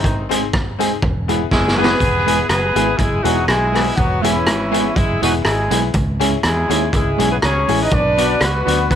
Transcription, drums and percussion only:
0.04 kick loud
0.04 hi-hat pedal medium
0.31 closed hi-hat loud
0.53 kick loud
0.53 cross-stick loud
0.80 closed hi-hat medium
1.02 kick loud
1.29 closed hi-hat medium
1.51 kick loud
1.51 snare medium
1.68 snare medium
1.84 snare loud
2.00 kick loud
2.00 closed hi-hat medium
2.28 closed hi-hat medium
2.49 cross-stick loud
2.49 closed hi-hat medium
2.76 closed hi-hat medium
2.99 kick loud
2.99 closed hi-hat medium
3.25 closed hi-hat medium
3.48 cross-stick loud
3.48 closed hi-hat medium
3.75 cross-stick medium
3.75 open hi-hat medium
3.98 kick loud
3.98 closed hi-hat medium
4.24 closed hi-hat loud
4.47 cross-stick loud
4.47 closed hi-hat medium
4.74 closed hi-hat medium
4.96 kick loud
4.96 closed hi-hat medium
5.23 closed hi-hat medium
5.45 cross-stick loud
5.45 closed hi-hat medium
5.71 closed hi-hat medium
5.93 kick loud
5.93 closed hi-hat medium
6.21 closed hi-hat loud
6.43 cross-stick loud
6.43 closed hi-hat medium
6.70 closed hi-hat medium
6.93 kick loud
6.93 closed hi-hat medium
7.20 closed hi-hat medium
7.42 cross-stick loud
7.42 closed hi-hat medium
7.68 open hi-hat medium
7.91 kick loud
7.91 closed hi-hat medium
8.18 closed hi-hat medium
8.41 cross-stick loud
8.41 closed hi-hat medium
8.68 closed hi-hat medium
8.91 kick loud
8.91 closed hi-hat medium

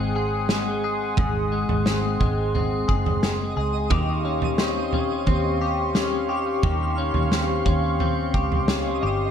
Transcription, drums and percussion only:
0.49 snare loud
1.17 kick loud
1.17 floor tom loud
1.69 floor tom medium
1.86 snare medium
2.21 kick medium
2.21 floor tom medium
2.55 floor tom medium
2.89 kick medium
3.06 floor tom medium
3.23 snare medium
3.90 kick loud
3.90 floor tom medium
4.42 floor tom medium
4.58 snare medium
4.93 floor tom medium
5.26 kick medium
5.26 floor tom medium
5.95 snare loud
6.63 kick loud
6.63 floor tom medium
7.14 floor tom medium
7.32 snare loud
7.65 kick medium
7.65 floor tom medium
8.00 floor tom medium
8.34 kick medium
8.52 floor tom medium
8.68 snare loud

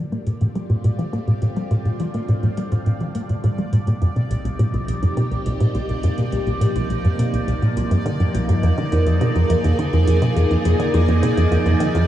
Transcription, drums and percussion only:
0.12 closed hi-hat soft
0.27 closed hi-hat medium
0.41 closed hi-hat soft
0.55 closed hi-hat soft
0.70 closed hi-hat soft
0.70 low bongo soft
0.84 closed hi-hat medium
0.99 closed hi-hat soft
1.13 closed hi-hat soft
1.28 closed hi-hat soft
1.42 closed hi-hat medium
1.56 closed hi-hat soft
1.71 closed hi-hat soft
1.71 low bongo soft
1.85 closed hi-hat soft
2.00 closed hi-hat medium
2.14 closed hi-hat soft
2.29 closed hi-hat soft
2.43 closed hi-hat soft
2.57 closed hi-hat medium
2.72 closed hi-hat soft
2.72 low bongo soft
2.86 closed hi-hat soft
3.00 closed hi-hat soft
3.15 closed hi-hat medium
3.29 closed hi-hat soft
3.44 closed hi-hat soft
3.58 closed hi-hat soft
3.73 closed hi-hat medium
3.73 low bongo soft
3.87 closed hi-hat soft
4.02 closed hi-hat soft
4.16 closed hi-hat soft
4.31 closed hi-hat medium
4.45 closed hi-hat medium
4.59 closed hi-hat soft
4.74 closed hi-hat soft
4.74 low bongo soft
4.88 closed hi-hat medium
5.03 closed hi-hat medium
5.17 closed hi-hat soft
5.31 closed hi-hat soft
5.46 closed hi-hat medium
5.60 closed hi-hat soft
5.75 closed hi-hat medium
5.75 low bongo soft
5.89 closed hi-hat soft
6.03 closed hi-hat medium
6.18 closed hi-hat medium
6.32 closed hi-hat soft
6.47 closed hi-hat soft
6.61 closed hi-hat medium
6.76 closed hi-hat medium
6.76 low bongo soft
6.90 closed hi-hat soft
7.05 closed hi-hat soft
7.19 closed hi-hat medium
7.34 closed hi-hat medium
7.48 closed hi-hat soft
7.62 closed hi-hat soft
7.77 closed hi-hat medium
7.77 low bongo soft
7.91 closed hi-hat soft
8.06 closed hi-hat soft
8.20 closed hi-hat soft
8.35 closed hi-hat medium
8.49 closed hi-hat soft
8.63 closed hi-hat soft
8.78 closed hi-hat soft
8.92 closed hi-hat medium
8.92 low bongo soft
9.07 closed hi-hat soft
9.21 closed hi-hat soft
9.36 closed hi-hat soft
9.50 closed hi-hat medium
9.64 closed hi-hat soft
9.79 closed hi-hat soft
9.93 closed hi-hat soft
9.93 low bongo soft
10.07 closed hi-hat medium
10.22 closed hi-hat soft
10.37 closed hi-hat soft
10.51 closed hi-hat soft
10.65 closed hi-hat medium
10.80 closed hi-hat soft
10.94 closed hi-hat soft
10.94 low bongo soft
11.08 closed hi-hat soft
11.23 closed hi-hat medium
11.37 closed hi-hat soft
11.52 closed hi-hat soft
11.66 closed hi-hat soft
11.80 closed hi-hat medium
11.95 closed hi-hat soft
11.95 low bongo soft

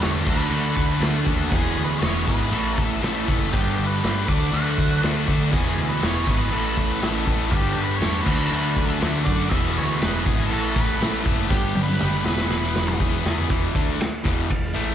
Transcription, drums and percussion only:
0.02 snare loud
0.02 crash medium
0.26 kick loud
0.26 crash medium
0.52 crash medium
0.77 kick medium
1.02 snare loud
1.02 crash medium
1.27 kick medium
1.51 kick loud
1.51 crash medium
2.02 snare loud
2.02 crash medium
2.28 kick medium
2.52 crash medium
2.78 kick medium
3.03 snare loud
3.03 crash medium
3.28 kick medium
3.53 kick loud
3.53 crash medium
4.04 snare loud
4.04 crash medium
4.28 kick loud
4.54 crash medium
4.78 kick medium
5.03 snare loud
5.03 crash medium
5.28 kick medium
5.53 kick loud
5.53 crash medium
6.02 snare loud
6.02 crash medium
6.27 kick medium
6.53 crash medium
6.77 kick medium
7.02 snare loud
7.02 crash medium
7.27 kick medium
7.52 kick loud
7.52 crash soft
8.01 snare loud
8.01 crash medium
8.27 kick loud
8.27 crash loud
8.52 crash medium
8.76 kick medium
9.01 snare loud
9.01 crash medium
9.27 kick medium
9.52 kick loud
9.52 crash medium
10.02 snare loud
10.02 crash medium
10.26 kick loud
10.52 crash medium
10.76 kick medium
11.02 snare loud
11.02 crash medium
11.26 kick medium
11.50 kick loud
11.50 snare medium
11.75 high tom medium
11.88 high tom medium
12.00 mid tom medium
12.26 snare medium
12.38 snare medium
12.50 snare medium
12.76 snare medium
12.88 mid tom medium
13.00 kick medium
13.26 snare loud
13.38 floor tom medium
13.50 kick loud
13.50 ride medium
13.75 kick loud
13.75 ride medium
14.01 snare loud
14.01 ride medium
14.25 kick loud
14.25 ride medium
14.51 kick medium
14.51 ride loud
14.76 ride medium

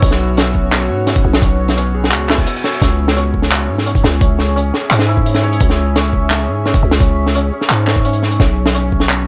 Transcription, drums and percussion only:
0.02 kick loud
0.02 closed hi-hat medium
0.05 closed hi-hat soft
0.08 snare medium
0.08 closed hi-hat soft
0.37 snare medium
0.37 closed hi-hat medium
0.55 kick medium
0.72 clap loud
0.72 snare medium
0.72 closed hi-hat medium
1.07 snare soft
1.07 closed hi-hat medium
1.16 kick loud
1.16 closed hi-hat medium
1.33 snare medium
1.33 closed hi-hat soft
1.42 kick loud
1.42 closed hi-hat medium
1.68 snare soft
1.68 closed hi-hat medium
1.78 closed hi-hat medium
2.04 snare medium
2.11 clap loud
2.11 closed hi-hat medium
2.29 clap medium
2.29 snare medium
2.38 kick medium
2.47 closed hi-hat medium
2.56 closed hi-hat medium
2.64 snare medium
2.73 closed hi-hat medium
2.82 kick loud
2.82 snare medium
2.82 closed hi-hat medium
3.08 snare medium
3.16 closed hi-hat medium
3.34 kick medium
3.42 snare medium
3.51 clap loud
3.51 closed hi-hat medium
3.78 snare soft
3.86 closed hi-hat medium
3.95 kick loud
3.95 closed hi-hat medium
4.04 snare medium
4.13 closed hi-hat soft
4.21 kick loud
4.21 closed hi-hat medium
4.39 snare medium
4.57 closed hi-hat medium
4.74 snare medium
4.91 clap loud
4.91 closed hi-hat loud
4.99 snare medium
5.17 kick medium
5.26 closed hi-hat medium
5.34 snare medium
5.34 closed hi-hat medium
5.53 closed hi-hat medium
5.60 kick loud
5.60 closed hi-hat medium
5.70 snare medium
5.96 snare medium
5.96 closed hi-hat medium
6.13 kick medium
6.30 clap loud
6.30 snare medium
6.30 closed hi-hat medium
6.66 snare medium
6.66 closed hi-hat medium
6.74 kick loud
6.74 closed hi-hat medium
6.91 snare medium
6.91 closed hi-hat soft
7.00 kick loud
7.00 closed hi-hat medium
7.27 snare soft
7.35 closed hi-hat medium
7.61 snare soft
7.70 clap loud
7.70 closed hi-hat medium
7.87 clap medium
7.87 snare medium
7.96 kick medium
8.05 closed hi-hat medium
8.13 closed hi-hat medium
8.23 snare soft
8.31 closed hi-hat medium
8.40 kick loud
8.40 snare soft
8.40 closed hi-hat medium
8.66 snare medium
8.74 closed hi-hat medium
8.92 kick medium
9.00 snare medium
9.09 clap loud
9.09 closed hi-hat medium

